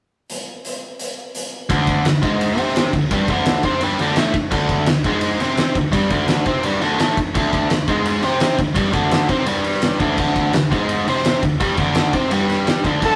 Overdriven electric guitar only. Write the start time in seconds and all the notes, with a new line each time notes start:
1.69 D2 D3
2.05 D2
2.22 G#2 G#3
2.58 C3 C4
2.94 D2
3.11 G2 G3
3.29 D2 D3
3.64 C3 C4
3.82 G2 G3
4.00 D2 D3
4.17 A2 A3
4.35 muted overdriven electric guitar stroke
4.51 D2 D3
4.88 D2
5.05 G#2 G#3
5.41 C3 C4
5.75 D2
5.92 G2 G3
6.11 D2 D3
6.46 C3 C4
6.64 G2 G3
6.81 D2 D3
6.99 A2 A3
7.18 muted overdriven electric guitar stroke
7.34 D2 D3
7.70 D2
7.88 G#2 G#3
8.23 C3 C4
8.59 D2
8.75 G2 G3
8.93 D2 D3
9.29 C3 C4
9.46 G2 G3
10.00 D2 D3
10.18 D2 D3
10.54 D2
10.71 G#2 G#3
11.08 C3 C4
11.43 D2
11.60 G2 G3
11.77 D2 D3
12.14 C3 C4
12.31 G2 G3
12.85 D2 D3
13.02 D2 A2 D3